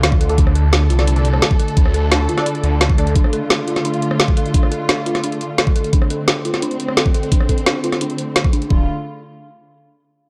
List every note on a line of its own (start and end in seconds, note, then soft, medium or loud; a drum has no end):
0.00 0.37 D2 loud
0.00 8.66 D3 medium
0.00 8.66 A3 medium
0.00 0.37 F4 medium
0.00 snare loud
0.00 closed hi-hat medium
0.12 kick loud
0.21 0.36 A4 medium
0.21 closed hi-hat medium
0.29 0.39 D4 medium
0.29 0.39 A4 medium
0.29 0.39 D5 medium
0.29 closed hi-hat soft
0.38 0.89 D2 loud
0.38 0.54 D4 medium
0.38 3.15 A4 medium
0.38 kick loud
0.38 closed hi-hat medium
0.47 cross-stick soft
0.55 0.62 A4 medium
0.55 closed hi-hat medium
0.73 0.83 D4 medium
0.73 snare loud
0.73 closed hi-hat medium
0.90 1.41 C2 loud
0.90 1.00 F4 medium
0.90 closed hi-hat medium
0.99 1.05 D4 medium
0.99 1.05 A4 medium
0.99 1.05 D5 medium
0.99 cross-stick soft
0.99 snare soft
0.99 closed hi-hat soft
1.07 1.23 D4 medium
1.07 closed hi-hat medium
1.16 1.26 D4 medium
1.16 1.26 A4 medium
1.16 1.26 D5 loud
1.16 closed hi-hat soft
1.25 closed hi-hat medium
1.34 cross-stick soft
1.42 snare loud
1.42 closed hi-hat medium
1.51 kick loud
1.59 1.75 A4 medium
1.59 closed hi-hat medium
1.68 closed hi-hat soft
1.77 2.27 D2 loud
1.77 1.92 D4 medium
1.77 kick loud
1.77 closed hi-hat medium
1.86 cross-stick soft
1.94 2.00 A4 medium
1.94 closed hi-hat medium
2.12 2.22 D4 medium
2.12 snare loud
2.12 closed hi-hat medium
2.29 2.39 F4 medium
2.29 closed hi-hat medium
2.38 2.47 D4 loud
2.38 2.47 A4 medium
2.38 2.47 D5 loud
2.38 cross-stick soft
2.38 snare soft
2.38 closed hi-hat soft
2.46 2.62 D4 medium
2.46 closed hi-hat medium
2.55 closed hi-hat soft
2.64 2.97 D2 loud
2.64 closed hi-hat medium
2.81 snare loud
2.81 closed hi-hat medium
2.90 kick loud
2.98 3.14 D2 loud
2.98 3.08 D4 medium
2.98 3.08 A4 medium
2.98 3.14 A4 medium
2.98 3.08 D5 medium
2.98 closed hi-hat medium
3.07 closed hi-hat soft
3.15 3.31 D4 medium
3.15 5.92 F4 medium
3.15 kick loud
3.15 closed hi-hat medium
3.24 cross-stick soft
3.33 3.39 A4 medium
3.33 closed hi-hat medium
3.50 3.61 D4 medium
3.50 snare loud
3.50 closed hi-hat medium
3.68 3.78 F4 medium
3.68 closed hi-hat medium
3.76 cross-stick soft
3.76 snare soft
3.76 closed hi-hat soft
3.85 4.00 D4 medium
3.85 closed hi-hat medium
3.94 closed hi-hat soft
4.02 closed hi-hat medium
4.11 cross-stick soft
4.20 4.30 A4 medium
4.20 snare loud
4.20 closed hi-hat medium
4.28 kick loud
4.37 4.52 A4 medium
4.37 closed hi-hat medium
4.46 closed hi-hat soft
4.54 4.70 D4 medium
4.54 kick loud
4.54 closed hi-hat medium
4.63 cross-stick soft
4.72 4.78 A4 medium
4.72 closed hi-hat medium
4.89 4.99 D4 medium
4.89 snare loud
4.89 closed hi-hat medium
5.06 5.17 F4 medium
5.06 closed hi-hat medium
5.15 cross-stick soft
5.15 snare soft
5.15 closed hi-hat soft
5.24 5.39 D4 medium
5.24 closed hi-hat medium
5.32 closed hi-hat soft
5.41 closed hi-hat medium
5.58 5.69 A4 medium
5.58 snare loud
5.58 closed hi-hat medium
5.67 kick loud
5.76 5.91 A4 medium
5.76 closed hi-hat medium
5.84 closed hi-hat soft
5.93 8.69 C4 medium
5.93 6.08 D4 medium
5.93 kick loud
5.93 closed hi-hat loud
6.02 cross-stick soft
6.10 6.17 A4 medium
6.10 closed hi-hat medium
6.28 6.38 D4 medium
6.28 snare loud
6.28 closed hi-hat loud
6.45 6.55 F4 medium
6.45 closed hi-hat medium
6.54 cross-stick soft
6.54 snare soft
6.54 closed hi-hat soft
6.62 6.78 D4 medium
6.62 closed hi-hat loud
6.71 closed hi-hat soft
6.80 closed hi-hat medium
6.88 cross-stick soft
6.97 7.07 A4 medium
6.97 snare loud
6.97 closed hi-hat medium
7.06 kick loud
7.14 7.30 A4 medium
7.14 closed hi-hat medium
7.23 closed hi-hat soft
7.32 7.47 D4 medium
7.32 kick loud
7.32 closed hi-hat loud
7.40 cross-stick soft
7.49 7.55 A4 medium
7.49 kick medium
7.49 closed hi-hat medium
7.58 closed hi-hat soft
7.66 7.77 D4 medium
7.66 snare loud
7.66 closed hi-hat loud
7.84 7.94 F4 medium
7.84 closed hi-hat medium
7.92 cross-stick soft
7.92 snare soft
7.92 closed hi-hat soft
8.01 8.17 D4 medium
8.01 closed hi-hat loud
8.10 closed hi-hat soft
8.18 closed hi-hat medium
8.36 snare loud
8.36 closed hi-hat loud
8.44 kick loud
8.53 8.69 D4 loud
8.53 closed hi-hat medium
8.62 closed hi-hat soft
8.70 8.87 D1 loud
8.70 8.87 D3 medium
8.70 8.87 A3 medium
8.70 8.87 D4 medium
8.70 8.87 F4 medium
8.70 kick loud